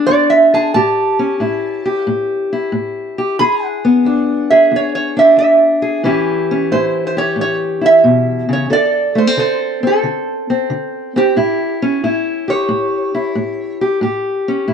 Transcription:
Already playing: steel-string acoustic guitar B3 D4 G#4
0.07 steel-string acoustic guitar E2, resonator guitar played with a steel bar D5
0.30 resonator guitar played with a steel bar E5
0.54 steel-string acoustic guitar G#4, resonator guitar played with a steel bar A5
0.74 steel-string acoustic guitar A2 G4, resonator guitar played with a steel bar A5
1.19 steel-string acoustic guitar C#4
1.40 steel-string acoustic guitar A2 E4
1.86 steel-string acoustic guitar G4
2.07 steel-string acoustic guitar A2
2.53 steel-string acoustic guitar E4
2.72 steel-string acoustic guitar A2
3.18 steel-string acoustic guitar G4
3.39 steel-string acoustic guitar E2 G#4, resonator guitar played with a steel bar B5
3.63 resonator guitar played with a steel bar F#5
3.85 steel-string acoustic guitar B3
4.05 steel-string acoustic guitar E2 D4
4.50 steel-string acoustic guitar G#4, resonator guitar played with a steel bar E5
4.72 steel-string acoustic guitar E2
4.76 resonator guitar played with a steel bar C#5
4.95 resonator guitar played with a steel bar C#5
5.17 steel-string acoustic guitar D4, resonator guitar played with a steel bar E5
5.37 steel-string acoustic guitar E2, resonator guitar played with a steel bar E5
5.82 steel-string acoustic guitar G#4
6.03 steel-string acoustic guitar A2 E3 C#4 E4 G4
6.51 steel-string acoustic guitar C#4
6.72 steel-string acoustic guitar A2 E4, resonator guitar played with a steel bar C5
7.07 resonator guitar played with a steel bar C5
7.17 steel-string acoustic guitar G4, resonator guitar played with a steel bar C#5
7.36 steel-string acoustic guitar A2
7.41 resonator guitar played with a steel bar C#5
7.81 steel-string acoustic guitar E4
7.86 resonator guitar played with a steel bar E5
8.04 steel-string acoustic guitar B2
8.49 steel-string acoustic guitar C#3
8.53 resonator guitar played with a steel bar C#5
8.70 steel-string acoustic guitar D3 A4, resonator guitar played with a steel bar D5
9.15 steel-string acoustic guitar A3, resonator guitar played with a steel bar C5
9.27 steel-string acoustic guitar C4
9.37 steel-string acoustic guitar D3 A4, resonator guitar played with a steel bar C5
9.83 steel-string acoustic guitar C4, resonator guitar played with a steel bar A4
10.03 steel-string acoustic guitar D3
10.50 steel-string acoustic guitar C4
10.70 steel-string acoustic guitar D3
11.16 steel-string acoustic guitar C4, resonator guitar played with a steel bar G4
11.36 steel-string acoustic guitar A2 E4
11.82 steel-string acoustic guitar C#4
12.04 steel-string acoustic guitar A2 E4
12.48 steel-string acoustic guitar G4, resonator guitar played with a steel bar C#5
12.69 steel-string acoustic guitar A2
13.15 steel-string acoustic guitar E4
13.35 steel-string acoustic guitar A2
13.81 steel-string acoustic guitar G4
14.01 steel-string acoustic guitar A2 G4
14.48 steel-string acoustic guitar C#4
14.68 steel-string acoustic guitar A2 E4

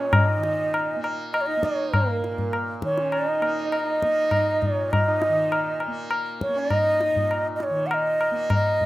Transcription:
Already playing: tanpura A#2 D#3 A#3
0.00 sarangi C#4, bansuri C#5
0.12 sarangi C#4, bansuri D#5, tabla na, tabla ge
0.27 sarangi D#4
0.36 tanpura D#3
0.43 tabla te
0.74 tabla na
0.96 tanpura A#3
1.04 tabla na
1.33 bansuri D#5, tabla na
1.41 bansuri C#5
1.46 sarangi D#4, bansuri D#5
1.57 tanpura A#3
1.62 sarangi D#4, bansuri C#5, tabla ke
1.94 bansuri A#4, tabla na, tabla ge
2.07 sarangi A#3
2.20 tanpura A#2
2.24 tabla te
2.38 tabla ge
2.53 tabla na
2.81 tanpura D#3, tabla ke
2.85 bansuri C#5
2.98 sarangi C#4, tabla te
3.12 bansuri D5, tabla na
3.28 sarangi D#4, bansuri D#5
3.41 tanpura A#3, tabla na
3.71 bansuri D#5, tabla na
3.87 sarangi D#4
4.02 tanpura A#3, tabla ke
4.31 tabla na, tabla ge
4.62 tanpura A#2, bansuri C#5, tabla ge
4.91 bansuri D#5, tabla na, tabla ge
5.07 sarangi D#4
5.22 tabla te
5.28 tanpura D#3
5.52 tabla na
5.80 tabla na
5.88 tanpura A#3
6.11 tabla na
6.41 bansuri C#5, tabla ke
6.49 tanpura A#3
6.56 sarangi C#4, bansuri D5
6.70 sarangi D#4, bansuri D#5, tabla na, tabla ge
7.01 tabla te
7.10 tanpura A#2
7.16 tabla ge
7.31 tabla na
7.56 bansuri D#5
7.60 bansuri C#5, tabla te
7.69 tanpura D#3
7.87 bansuri F#5
7.91 bansuri D#5, tabla na
8.21 tabla na
8.31 tanpura A#3
8.50 tabla na, tabla ge
8.55 bansuri D#5
8.81 tabla ge

